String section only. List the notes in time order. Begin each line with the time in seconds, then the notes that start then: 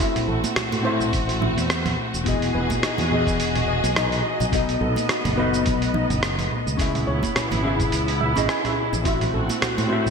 0.00 A3 C4 F#4
2.26 E3 F#4 G#4 D#5
4.52 A3 B3
6.79 C#3 B3 E4
9.05 A3 C4 F#4